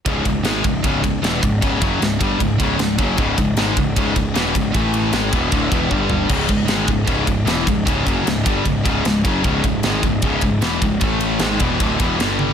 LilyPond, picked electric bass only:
\new Staff \with { instrumentName = "Picked electric bass" } { \clef bass \time 4/4 \key cis \minor \tempo 4 = 153 cis,,8 cis,,8 gis,,8 cis,,8 cis,,8 cis,,8 e,,8 cis,,8 | cis,,8 fis,,8 cis,,8 g,,8 cis,,8 cis,,8 cis,,8 fis,,8 | cis,,8 cis,,8 gis,,8 cis,,8 cis,,8 cis,,8 e,,8 cis,,8 | a,,4 gis,,8 e,,8 d,,8 e,,8 g,,4 |
cis,,8 cis,,8 gis,,8 cis,,8 cis,,8 cis,,8 e,,8 cis,,8 | cis,,8 fis,,8 cis,,8 g,,8 cis,,8 cis,,8 cis,,8 fis,,8 | cis,,8 cis,,8 gis,,8 cis,,8 cis,,8 cis,,8 e,,8 cis,,8 | a,,4 gis,,8 e,,8 d,,8 e,,8 g,,4 | }